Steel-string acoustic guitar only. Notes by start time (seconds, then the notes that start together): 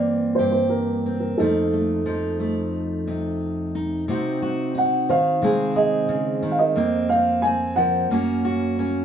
Already playing: G2 E3 A#3 C4
0.38 G2 G4
1.06 C4
1.40 F2 F3 A3 D#4
1.73 A3
2.06 F3 D#4
2.40 A3
3.07 C3 D#4
3.75 D#4
4.08 C3 C4 D#4 F#4
4.42 F#4
4.75 D#4
5.09 D#3
5.42 C3 G#3 C4 G#4
5.76 G#4
6.09 C#3
6.42 D#3
6.75 F2 A#3 C4
7.11 C4
7.44 C4
7.77 F3
8.10 F#2 A#3 C#4 F#4
8.45 F#4
8.79 C#4